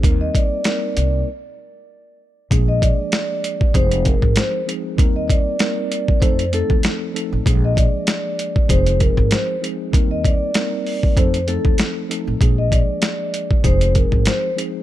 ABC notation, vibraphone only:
X:1
M:4/4
L:1/16
Q:"Swing 16ths" 1/4=97
K:Eb
V:1 name="Vibraphone"
z e d6 z8 | z e d6 c2 B2 c2 z2 | z e d6 c2 =A2 z4 | z e d6 c2 B2 c2 z2 |
z e d6 c2 =A2 z4 | z e d6 c2 B2 c2 z2 |]